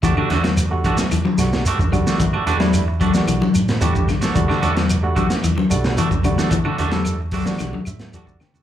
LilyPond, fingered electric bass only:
\new Staff \with { instrumentName = "Fingered electric bass" } { \clef bass \time 4/4 \key e \minor \tempo 4 = 111 e,16 r16 e,4 e16 r16 e,16 r16 b,,8 r16 e,8 e16~ | e16 r16 e,4~ e,16 e16 b,,16 r16 a,8 e,8 r8 | e,16 r16 e,4 e16 r16 e,16 r16 b,,8 r16 e,8 e16~ | e16 r16 e,4~ e,16 e16 b,,16 r16 a,8 e,8 r8 | }